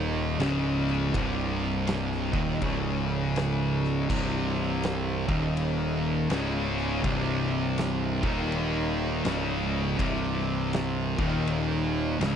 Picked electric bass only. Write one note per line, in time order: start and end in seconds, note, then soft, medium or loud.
0.00 0.36 D#1 loud
0.39 1.10 C#1 loud
1.14 2.29 C1 medium
2.34 2.60 D#1 medium
2.62 4.05 C#1 loud
4.10 5.25 C1 medium
5.28 6.26 D#1 loud
6.30 7.00 C#1 loud
7.04 8.19 C1 medium
8.24 9.21 D#1 loud
9.25 9.95 C#1 loud
9.99 11.14 C1 medium
11.19 12.16 D#1 loud
12.19 12.36 C#1 loud